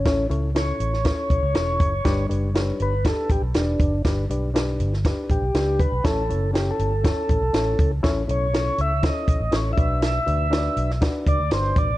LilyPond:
<<
  \new Staff \with { instrumentName = "Tonewheel organ" } { \time 4/4 \key a \mixolydian \tempo 4 = 120 cis'8 r8 cis''4 cis''2~ | cis''8 r4 b'8 a'8 g'8 d'4 | r2 r8 g'4 b'8 | a'4 \tuplet 3/2 { g'8 a'4~ } a'2 |
r8 cis''4 e''8 dis''4 \tuplet 3/2 { cis''8 e''4~ } | e''2 r8 d''8 c''8 d''8 | }
  \new Staff \with { instrumentName = "Reed electric piano" } { \time 4/4 \key a \mixolydian <cis' e' a' cis''>8 <cis' e' a' cis''>8 <cis' e' a' cis''>8. r16 <cis' e' a' b' cis''>8. r16 <cis' e' a' cis''>8. r16 | <d' g' b' d''>8 <d' g' b' d''>8 <d' g' a' b' cis''>8. r16 <d' g' b' d''>8. r16 <d' g' a' b' d''>8. r16 | <d' g' b' d''>8 <d' g' b' d''>8 <d' g' b' d''>8. r16 <d' g' b' d''>8. r16 <d' g' b' d''>8. r16 | <cis' e' a' cis''>8 <cis' e' a' cis''>8 <cis' e' a' cis''>8. r16 <cis' e' a' cis''>8. r16 <cis' e' a' cis''>8. r16 |
<cis' e' a' cis''>8 <cis' e' a' cis''>8 <cis' e' a' cis''>8. r16 <cis' e' a' c'' cis''>8. r16 <cis' e' a' cis''>8 <d' fis' b' d''>8~ | <d' fis' b' d''>8 <d' fis' b' d''>8 <d' fis' b' cis'' d''>8. r16 <d' fis' b' d''>8. r16 <d' fis' b' d''>8. r16 | }
  \new Staff \with { instrumentName = "Reed electric piano" } { \clef bass \time 4/4 \key a \mixolydian a,4. r2 r8 | g4. r2 r8 | g,4. r2 r8 | a,4. r2 r8 |
a,4. r2 b,8~ | b,4 r2 r8 b,8 | }
  \new Staff \with { instrumentName = "Fingered electric bass" } { \clef bass \time 4/4 \key a \mixolydian a,,8 cis,4 a,,8. r16 b,,16 cis,16 e,,8 fis,,8 | g,,8 fis,,4 g,,8. r16 a,,16 b,,16 e,,8 fis,,8 | g,,8 b,,4 g,,8. r16 a,,16 b,,16 cis,8. b,,16 | a,,8 fis,,4 g,,8. r16 a,,16 b,,16 a,,8 cis,8 |
a,,8 b,,4 cis,8. r16 b,,16 a,,16 a,,8 b,,8~ | b,,8 d,4 b,,8. r16 cis,16 d,16 g,,8 a,,8 | }
  \new DrumStaff \with { instrumentName = "Drums" } \drummode { \time 4/4 <hh bd sn>8 hh8 <hh sn>8 hh16 sn16 <hh bd sn>8 <hh bd>8 <hh sn>8 <hh bd>8 | <hh bd sn>8 hh8 <hh sn>8 hh8 <hh bd sn>8 <hh bd>8 <hh sn>8 <hh bd>8 | <hh bd sn>8 hh8 <hh sn>8 hh16 sn16 <hh bd sn>8 <hh bd>8 <hh sn>8 <hh bd>8 | <hh bd sn>8 hh8 <hh sn>8 hh8 <hh bd sn>8 <hh bd>8 <hh sn>8 <hh bd>8 |
<hh bd sn>8 hh8 <hh sn>8 hh8 <hh bd sn>8 <hh bd>8 <hh sn>8 <hh bd>8 | <hh sn>8 hh8 <hh sn>8 hh16 sn16 <hh bd sn>8 <hh bd>8 <hh sn>8 <hh bd>8 | }
>>